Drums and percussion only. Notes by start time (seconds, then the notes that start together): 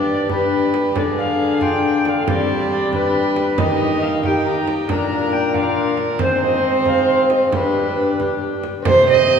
0.29 frame drum
0.74 frame drum
0.96 frame drum
1.61 frame drum
2.05 frame drum
2.28 frame drum
2.93 frame drum
3.36 frame drum
3.58 frame drum
4.23 frame drum
4.67 frame drum
4.89 frame drum
5.54 frame drum
5.97 frame drum
6.19 frame drum
6.85 frame drum
7.30 frame drum
7.52 frame drum
8.20 frame drum
8.64 frame drum
8.85 frame drum